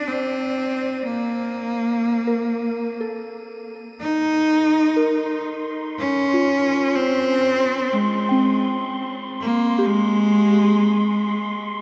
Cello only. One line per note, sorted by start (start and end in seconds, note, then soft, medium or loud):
0.08 1.05 C4 medium
1.04 3.01 A#3 medium
4.00 5.43 D#4 loud
5.98 6.97 C#4 loud
6.95 7.94 C4 loud
7.92 8.91 G#3 medium
9.41 9.87 A#3 medium
9.86 11.35 G#3 loud